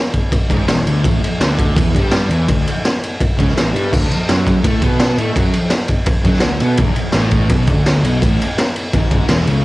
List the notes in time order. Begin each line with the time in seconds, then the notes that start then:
0.14 kick, ride
0.32 kick, ride
0.50 G#1 G#2, kick, ride
0.68 E1 E2, snare, ride
0.86 D2 D3, ride
1.04 A1 A2, kick, ride
1.22 muted fingered electric bass stroke, muted distorted electric guitar stroke, ride
1.40 D2 D3, snare, ride
1.59 kick, ride
1.76 E2 E3, kick, ride
1.95 G2 G3, kick, ride
2.11 snare, ride
2.29 E2 E3, ride
2.48 D2 D3, kick, ride
2.67 ride
2.85 snare, ride
3.03 ride
3.21 kick, ride
3.38 C#2 C#3, kick, ride
3.48 snare
3.56 A1 A2, snare, ride
3.73 G2 G3, ride
3.92 D2 D3, kick, crash
4.10 muted distorted electric guitar stroke, muted fingered electric bass stroke, ride
4.28 F#2 F#3, snare, ride
4.47 kick, ride
4.64 A2 A3, kick, ride
4.82 B2 B3, kick, ride
5.00 snare, ride
5.18 A2 A3, ride
5.36 F#2 F#3, kick, ride
5.53 ride
5.70 snare, ride
5.88 kick, ride
6.06 kick, ride
6.24 F#2 F#3, kick, ride
6.33 snare
6.40 D2, snare, ride
6.45 D3
6.60 B2 B3, ride
6.77 E1 E2, kick, ride
6.96 muted fingered electric bass stroke, muted distorted electric guitar stroke, ride
7.12 A1 A2, snare, ride
7.31 kick, ride
7.49 B1 B2, kick, ride
7.67 D2 D3, kick, ride
7.86 snare, ride
8.03 B1 B2, ride
8.22 A1 A2, kick, ride
8.41 ride
8.58 snare, ride
8.76 ride
8.93 G#1 G#2, kick, ride
9.11 kick, ride
9.29 E1 E2, snare, ride
9.47 C#2 C#3, ride